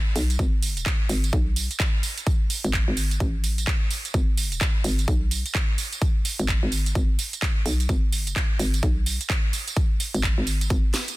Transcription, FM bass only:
0.16 B1
0.39 G#1
1.09 G#1
1.33 B1
2.64 G#1
2.88 G#1
3.20 A1
4.14 G#1
4.84 G#1
5.08 B1
6.39 G#1
6.63 G#1
6.95 G#1
7.66 B1
7.89 G#1
8.59 G#1
8.83 B1
10.14 G#1
10.38 G#1
10.70 G#1

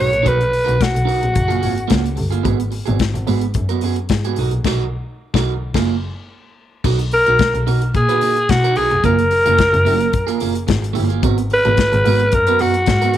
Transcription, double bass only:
0.00 B1
0.13 A#1
0.26 B1
0.68 B1
0.95 B1
1.23 A#1
1.36 F#1
1.63 G#1
1.90 C#2
2.18 G1
2.45 G#1
2.87 G#1
3.14 G#1
3.27 G#2
3.55 F#2
3.82 F#2
4.10 G#2
4.37 B1
4.51 A#1
4.64 B1
5.34 B1
5.75 F#1
6.84 B1
7.26 B1
7.54 B1
7.67 B2
7.94 A#2
8.21 A#2
8.49 B2
8.76 B1
8.91 F1
9.04 F#1
9.45 F#1
9.73 F#1
9.86 F#2
10.41 F#1
10.68 G#1
10.96 G1
11.23 G#1
11.65 G#1
11.92 G#1
12.05 G#2
12.33 F#2
12.60 F#2
12.88 G#2

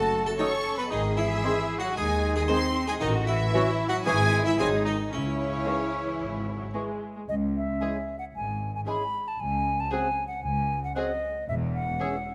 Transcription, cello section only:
Already playing: F#4
0.39 A4
0.92 G#4
1.97 D#4
3.02 F#4
3.54 E4
4.07 E4
4.59 D#4
5.13 E4
7.28 C#2
8.34 G#2
9.40 C#2
10.44 C#2
11.49 E2

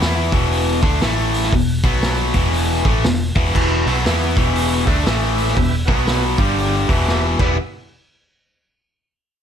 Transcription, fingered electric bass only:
0.00 E2
0.32 E1
0.83 D2
1.01 A1
1.52 E1
1.83 B1
2.34 E1
2.85 A1
3.04 E1
3.36 E1
3.55 E1
3.86 B1
4.05 E2
4.37 E1
4.87 D2
5.06 A1
5.56 E1
5.88 B1
6.38 G1
6.89 E1
7.39 E1

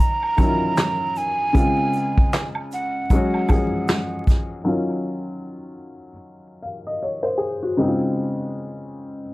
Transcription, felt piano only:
Already playing: D#3 F#3 C#4 F4
0.37 D#3 F#3 C#4 E4
0.47 F4
1.53 C#3 G#3 C4
1.57 F4
3.11 F#3 G#3 C#4
3.15 F#4
3.48 F3 G#3 C#4 G#4
4.64 D#3 F#3 C#4 F4
6.62 F5
6.87 D#5
7.03 C#5
7.23 C5
7.38 G#4
7.63 F#4
7.77 C#3 G#3 C4 D#4
7.88 F4

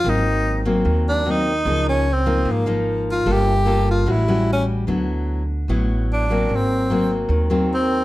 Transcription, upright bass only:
0.05 G#1
0.85 D#2
1.65 C#2
2.45 G#1
3.26 G1
4.06 A1
4.88 D2
5.68 A1
6.49 G#1
7.29 D#2

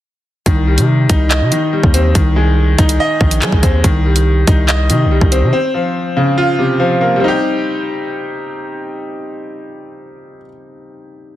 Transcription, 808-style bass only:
0.46 C2
0.78 C3
1.10 C2
1.41 C3
1.83 D#2
2.15 C2
2.79 C2
3.21 A#1
3.42 G3
3.52 C2
3.63 D#2
3.84 C2
4.47 C2
4.90 C3
5.06 C2
5.21 C2
5.42 C3

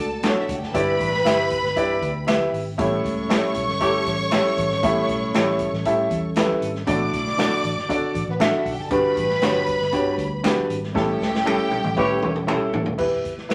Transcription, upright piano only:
0.23 D4 F#4 A4 C#5
0.74 G2 E4 G4 B4 D5
1.25 E4 G4 B4 E5
1.76 E4 G4 B4 D5
2.27 E4 G4 B4 E5
2.78 A2 E4 G4 A4 C#5
3.29 E4 G4 A4 C#5
3.80 E4 G4 A4 C#5
4.31 E4 G4 A4 C#5
4.83 A2 E4 G4 A4 E5
5.34 E4 G4 A4 C#5
5.86 E4 G4 A4 E5
6.36 E4 G4 A4 B4
6.87 A2 D4 F#4 A4 D5
7.38 D4 F#4 A4 D5
7.89 D4 F#4 A4 D5
8.40 D4 F#4 A4 E5
8.90 G2 D4 F#4 G4 B4
9.42 D4 F#4 G4 C#5
9.92 D4 F#4 G4 C#5
10.43 D4 F#4 G4 B4
10.94 A2 C#4 E4 G4 A4
11.45 C#4 E4 G4 A4
11.96 C#4 E4 G4 B4
12.47 C#4 E4 G4 A4
12.98 E3 B3 E4 G4 B4
13.49 B3 E4 G4 B4

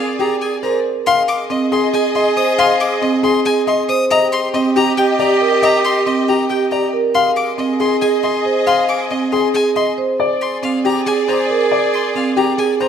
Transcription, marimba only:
0.19 G#4
0.63 A#4
1.50 C4
1.94 G#4
2.37 C5
3.02 C4
3.46 G#4
3.89 C5
4.54 C4
4.97 G4
5.41 A#4
6.06 C4
6.50 G4
6.93 A#4
7.58 C4
8.02 G#4
8.45 C5
9.11 C4
9.54 G#4
9.98 C5
10.63 C4
11.06 G#4
11.50 A#4
12.15 C4
12.58 G#4

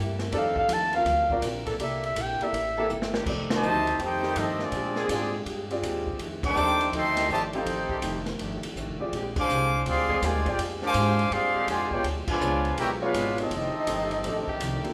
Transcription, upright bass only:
Already playing: G2
0.32 F2
0.68 D#2
1.05 D2
1.43 A#1
1.79 C2
2.16 A#1
2.41 muted upright bass stroke
2.52 A1
2.91 G1
3.26 F1
3.63 D2
3.99 F2
4.36 G2
4.72 A#2
5.09 G#2
5.46 G2
5.82 D#2
6.19 F2
6.56 D#2
6.92 D2
7.28 G1
7.65 A1
8.02 F1
8.39 G1
8.64 muted upright bass stroke
8.76 A1
8.87 F1
9.00 D#1
9.13 A#1
9.49 C2
9.86 D2
10.22 D#2
10.35 D2
10.46 A#1
10.58 F2
10.94 G#2
11.31 G2
11.55 muted upright bass stroke
11.67 F2
11.91 muted upright bass stroke
12.04 D2
12.27 muted upright bass stroke
12.40 C#2
12.77 B1
13.14 G#1
13.50 F1
13.87 G1
14.24 A1
14.48 muted upright bass stroke
14.60 C2
14.84 muted upright bass stroke

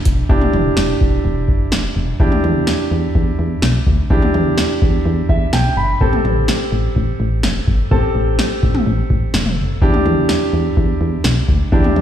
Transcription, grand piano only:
Already playing: D4 E4 G4
0.29 D4 E4 G4
2.20 D4 E4 G4
4.11 D4 E4 G4
5.29 E5
5.53 G5
5.77 B5
6.01 C4 G4 A4
7.91 C4 G4 A4
9.82 D4 E4 G4
11.72 D4 E4 G4

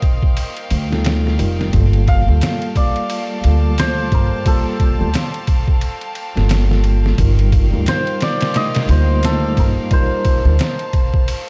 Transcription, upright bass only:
0.71 D2
1.40 F1
1.74 G1
2.28 D2
3.44 D2
4.12 G1
5.01 D2
6.37 G1
7.18 G1
7.74 D2
8.89 D2
9.57 G1
10.45 D2

